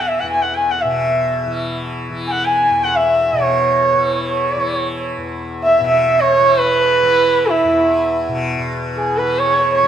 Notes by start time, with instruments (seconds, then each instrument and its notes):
Already playing: tanpura E2 B2 E3
0.08 sarangi E5
0.19 tanpura E2, sarangi F#5
0.30 sarangi G#5
0.42 sarangi F#5
0.55 sarangi G#5
0.71 sarangi F#5
0.81 tanpura B2, sarangi E5
1.46 tanpura E3
2.10 tanpura E3
2.27 sarangi G#5
2.31 sarangi F#5
2.45 sarangi G#5
2.70 tanpura E2
2.84 sarangi F#5
2.96 sarangi E5
3.33 tanpura B2
3.42 sarangi C#5
3.94 tanpura E3
4.24 sarangi C#5
4.56 tanpura E3
5.18 tanpura E2
5.63 sarangi E5
5.80 tanpura B2
5.87 sarangi E5
6.21 sarangi C#5
6.41 tanpura E3
6.59 sarangi B4
7.03 tanpura E3
7.50 sarangi E4
7.64 tanpura E2
8.28 tanpura B2
8.57 tanpura B2
8.96 sarangi G#4
9.18 tanpura E3, sarangi B4
9.39 sarangi C#5
9.75 sarangi C#5
9.83 tanpura E3